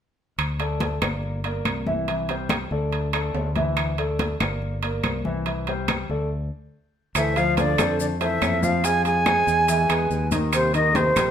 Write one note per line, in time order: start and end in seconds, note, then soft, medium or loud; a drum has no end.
0.38 0.98 D2 medium
0.38 high conga soft
0.38 high timbale medium
0.38 claves medium
0.59 0.94 A3 medium
0.59 0.95 A4 medium
0.59 0.95 D5 medium
0.59 high conga soft
0.59 high timbale medium
0.80 high conga medium
0.80 high timbale medium
1.01 1.61 G1 medium
1.01 1.37 A#3 medium
1.01 1.37 A#4 medium
1.01 1.37 D5 medium
1.01 high conga medium
1.01 high timbale medium
1.01 claves medium
1.23 high conga soft
1.44 1.79 A#3 medium
1.44 1.79 A#4 medium
1.44 1.80 D5 medium
1.44 high conga soft
1.44 high timbale medium
1.65 2.65 C2 medium
1.65 high conga medium
1.65 high timbale medium
1.65 claves medium
1.87 2.04 E3 medium
1.87 2.04 E4 medium
1.87 2.04 E5 medium
1.87 high conga medium
2.08 2.25 E3 medium
2.08 2.25 E4 medium
2.08 2.26 E5 medium
2.08 high conga soft
2.08 high timbale medium
2.29 2.64 G3 medium
2.29 2.64 G4 medium
2.29 2.64 C5 medium
2.29 high conga soft
2.29 high timbale medium
2.49 high conga medium
2.49 high timbale medium
2.49 claves medium
2.71 3.31 D2 medium
2.71 3.06 A3 medium
2.71 3.06 A4 medium
2.71 3.06 D5 medium
2.71 high conga soft
2.92 high conga soft
2.92 high timbale medium
3.13 3.48 A3 medium
3.13 3.48 A4 medium
3.13 3.48 D5 medium
3.13 high conga soft
3.13 high timbale medium
3.13 claves medium
3.34 4.34 D2 medium
3.34 high conga soft
3.34 low timbale medium
3.56 3.91 E3 medium
3.56 3.91 E4 medium
3.56 3.91 E5 medium
3.56 high conga medium
3.56 high timbale medium
3.77 high conga soft
3.77 high timbale medium
3.77 claves medium
3.98 4.33 A3 medium
3.98 4.33 A4 medium
3.98 4.33 D5 medium
3.98 high conga soft
3.98 high timbale medium
4.19 high conga medium
4.19 high timbale medium
4.40 5.00 G1 medium
4.40 4.75 A#3 medium
4.40 4.75 A#4 medium
4.40 4.75 D5 medium
4.40 high conga medium
4.40 high timbale medium
4.40 claves medium
4.62 high conga soft
4.83 5.17 A#3 medium
4.83 5.18 A#4 medium
4.83 5.18 D5 medium
4.83 high conga soft
4.83 high timbale medium
5.03 6.03 C2 medium
5.03 high conga medium
5.03 high timbale medium
5.03 claves medium
5.25 5.42 E3 medium
5.25 5.42 E4 medium
5.25 5.43 E5 medium
5.25 high conga medium
5.46 5.63 E3 medium
5.46 5.63 E4 medium
5.46 5.64 E5 medium
5.46 high conga soft
5.46 high timbale medium
5.67 6.02 G3 medium
5.67 6.03 G4 medium
5.67 6.03 C5 medium
5.67 high conga soft
5.67 high timbale medium
5.88 high conga medium
5.88 high timbale medium
5.88 claves medium
6.09 6.49 D2 medium
6.09 6.27 A3 medium
6.09 6.27 A4 medium
6.09 6.27 D5 medium
6.09 high conga soft
7.15 7.74 D2 medium
7.15 7.39 E3 medium
7.15 7.33 A3 medium
7.15 7.33 A4 medium
7.15 7.33 C5 medium
7.15 7.39 E5 medium
7.15 high conga soft
7.15 high timbale medium
7.15 claves medium
7.15 maracas medium
7.36 7.71 F3 medium
7.36 7.58 F3 medium
7.36 7.71 F4 medium
7.36 7.71 F5 medium
7.36 7.58 F5 medium
7.36 high conga soft
7.36 high timbale medium
7.36 maracas soft
7.57 7.97 D3 medium
7.57 7.97 D5 medium
7.57 high conga medium
7.57 high timbale medium
7.57 maracas soft
7.78 8.38 F2 medium
7.78 8.13 A3 medium
7.78 8.13 A4 medium
7.78 8.14 C5 medium
7.78 high conga medium
7.78 high timbale medium
7.78 claves medium
7.78 maracas medium
8.00 8.10 D3 medium
8.00 8.06 D5 medium
8.00 high conga soft
8.00 maracas medium
8.21 8.65 E3 medium
8.21 8.55 A3 medium
8.21 8.56 A4 medium
8.21 8.56 C5 medium
8.21 8.65 E5 medium
8.21 high conga soft
8.21 high timbale medium
8.21 maracas soft
8.42 9.41 F2 medium
8.42 high conga medium
8.42 high timbale medium
8.42 low timbale medium
8.42 claves medium
8.42 maracas soft
8.63 8.80 F3 medium
8.63 8.86 F3 medium
8.63 8.80 F4 medium
8.63 8.81 F5 medium
8.63 8.86 F5 medium
8.63 high conga medium
8.63 maracas medium
8.84 9.19 F3 medium
8.84 9.05 G#3 medium
8.84 9.19 F4 medium
8.84 9.19 F5 medium
8.84 9.05 G#5 medium
8.84 high conga soft
8.84 high timbale medium
8.84 maracas medium
9.05 10.28 G#3 medium
9.05 10.28 G#5 loud
9.05 high conga soft
9.05 high timbale medium
9.05 maracas soft
9.26 9.61 G#3 medium
9.26 9.61 G#4 medium
9.26 9.61 C5 medium
9.26 high conga medium
9.26 high timbale medium
9.26 claves medium
9.26 maracas soft
9.47 9.86 E2 medium
9.47 high conga soft
9.47 maracas medium
9.68 9.86 E3 medium
9.68 9.86 E4 medium
9.68 9.86 E5 medium
9.68 high conga soft
9.68 high timbale medium
9.68 maracas medium
9.89 10.09 E2 medium
9.89 10.24 G#3 medium
9.89 10.24 G#4 medium
9.89 10.24 B4 medium
9.89 high conga soft
9.89 high timbale medium
9.89 claves medium
9.89 maracas soft
10.10 11.10 D#2 medium
10.10 high conga soft
10.10 maracas soft
10.31 10.49 D#3 medium
10.31 10.49 D#4 medium
10.31 10.49 D#5 medium
10.31 high conga medium
10.31 high timbale medium
10.31 maracas medium
10.53 10.73 C3 medium
10.53 10.70 G3 medium
10.53 10.70 G4 medium
10.53 10.70 A#4 medium
10.53 10.73 C5 medium
10.53 high conga soft
10.53 high timbale medium
10.53 claves medium
10.53 maracas medium
10.74 11.09 D#3 medium
10.74 10.97 D#3 medium
10.74 11.09 D#4 medium
10.74 11.09 D#5 medium
10.74 10.97 D#5 medium
10.74 high conga soft
10.74 high timbale medium
10.74 maracas soft
10.95 11.31 C3 medium
10.95 11.31 C5 medium
10.95 high conga loud
10.95 high timbale medium
10.95 maracas soft
11.16 11.31 A#1 medium
11.16 11.31 G3 medium
11.16 11.31 G4 medium
11.16 11.31 A#4 medium
11.16 high conga medium
11.16 high timbale medium
11.16 claves medium
11.16 maracas medium